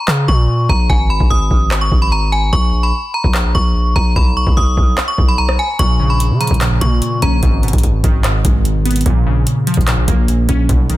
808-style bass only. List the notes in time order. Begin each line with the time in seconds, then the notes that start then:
0.08 C#3
0.28 A#2
0.69 A#1
0.90 G#1
1.20 G#1
1.30 G#1
1.51 G#1
1.92 G#1
2.53 A#1
3.24 A#1
3.55 A#1
3.96 A#1
4.16 B1
4.47 B1
4.57 B1
4.77 B1
5.18 B1
5.79 A#1
6.30 C#3
6.51 A#1
6.81 A#2
7.22 A#1
7.43 G#1
7.73 G#1
7.83 G#1
8.04 G#1
8.45 G#1
9.06 A#1
9.77 A#1
10.08 A#1
10.49 A#1
10.69 B1